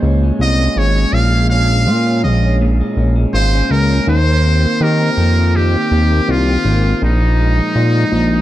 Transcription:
0.00 0.32 C#2 medium
0.00 1.14 A#2 medium
0.00 0.22 G#3 medium
0.00 0.58 C#4 medium
0.00 0.40 F4 medium
0.23 0.77 G#3 medium
0.39 0.69 C2 medium
0.39 1.87 F4 medium
0.39 0.79 D#5 medium
0.59 0.95 C#4 soft
0.76 1.06 G#1 medium
0.76 1.32 G#3 medium
0.76 1.15 C#5 medium
0.96 1.50 C#4 medium
1.13 1.88 A#1 medium
1.13 2.60 A#2 medium
1.13 1.49 F5 loud
1.33 1.68 G#3 medium
1.50 2.05 C#4 medium
1.50 2.20 F5 loud
1.70 2.24 G#3 medium
1.86 2.25 A#2 loud
1.86 3.33 F4 medium
2.06 2.42 C#4 medium
2.23 2.82 A#1 medium
2.23 2.79 G#3 medium
2.23 2.58 D#5 medium
2.43 2.97 C#4 medium
2.62 4.16 A#2 medium
2.81 3.14 G#3 medium
2.97 3.26 A#1 medium
2.97 3.51 C#4 medium
3.16 3.71 G#3 medium
3.33 3.63 G#1 medium
3.33 4.15 F4 medium
3.33 3.72 C5 loud
3.53 3.88 C#4 medium
3.71 4.00 C#2 medium
3.71 4.15 G#3 medium
3.71 4.08 A#4 loud
3.90 4.15 C#4 medium
4.07 4.66 D#2 loud
4.07 5.55 D#3 medium
4.07 4.84 C5 loud
4.26 4.63 A#3 medium
4.45 4.99 C4 medium
4.64 5.19 A#3 medium
4.81 5.10 D#3 loud
4.81 6.28 G4 medium
4.81 5.57 A#4 loud
5.00 5.36 C4 medium
5.17 5.76 F2 medium
5.17 5.74 A#3 medium
5.37 5.91 C4 medium
5.56 7.21 D#3 medium
5.56 6.32 G4 medium
5.74 6.11 A#3 medium
5.91 6.21 D#2 medium
5.91 6.47 C4 medium
6.12 6.66 A#3 medium
6.28 6.58 C2 medium
6.28 7.03 F4 medium
6.28 7.10 G4 medium
6.48 6.84 C4 medium
6.65 6.94 G#1 medium
6.65 7.39 A#3 medium
6.85 7.10 C4 medium
7.02 7.61 A#1 loud
7.02 8.41 A#2 medium
7.02 8.41 D#4 medium
7.21 7.58 F3 medium
7.40 7.95 G#3 medium
7.58 8.14 F3 soft
7.75 8.05 A#2 medium
7.75 8.41 D#4 medium
7.95 8.32 G#3 medium
8.12 8.41 A#1 medium
8.12 8.41 F3 medium
8.32 8.41 G#3 soft

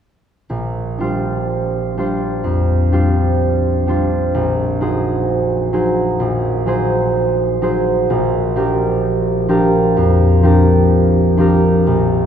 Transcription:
0.50 4.33 A#1 soft
0.98 1.96 G3 soft
0.98 1.97 D4 soft
0.98 1.97 F4 soft
1.03 1.98 C5 soft
1.97 2.91 G3 soft
1.97 2.92 D4 soft
1.97 2.92 F4 soft
1.97 2.92 C5 soft
2.44 4.38 F2 soft
2.92 3.86 G3 soft
2.92 3.87 D4 soft
2.92 3.87 F4 soft
2.92 3.88 C5 soft
3.87 4.38 G3 soft
3.87 4.38 D4 soft
3.87 4.39 F4 soft
3.87 4.81 C5 soft
4.34 6.18 A#1 soft
4.81 5.72 F#3 soft
4.81 5.72 D#4 soft
4.81 5.72 G#4 soft
4.81 5.72 C5 soft
5.73 6.65 F#3 soft
5.73 6.65 D#4 soft
5.73 6.65 G#4 soft
5.73 6.67 C5 soft
6.20 8.09 A#1 soft
6.66 7.61 F#3 soft
6.66 7.60 D#4 soft
6.66 7.61 G#4 soft
6.66 7.62 C5 soft
7.62 8.12 F#3 soft
7.62 8.12 D#4 soft
7.62 8.12 G#4 soft
7.62 8.13 C5 soft
8.10 11.86 A#1 soft
8.55 9.47 F3 soft
8.55 9.48 D4 soft
8.55 9.48 G4 soft
8.55 9.48 A#4 soft
9.48 10.42 F3 soft
9.48 10.43 D4 soft
9.48 10.44 G4 soft
9.48 10.44 A#4 soft
9.97 11.91 F2 soft
10.43 11.37 F3 soft
10.43 11.37 D4 soft
10.43 11.38 G4 soft
10.43 11.38 A#4 soft
11.37 11.90 F3 soft
11.37 11.91 D4 soft
11.37 12.26 G4 soft
11.37 12.26 A#4 soft
11.87 12.26 A#1 soft

